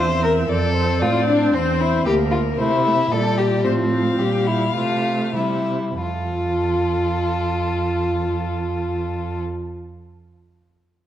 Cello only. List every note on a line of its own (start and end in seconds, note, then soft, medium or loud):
0.00 0.49 E2 medium
0.49 1.03 F2 medium
1.01 1.54 A2 medium
1.54 2.05 E2 medium
2.07 2.58 D2 medium
2.59 3.10 C3 medium
3.11 3.66 A#2 medium
3.64 4.18 A2 medium
4.19 4.75 A#2 soft
4.76 5.35 C3 soft
5.37 6.01 C3 soft
6.02 9.42 F2 soft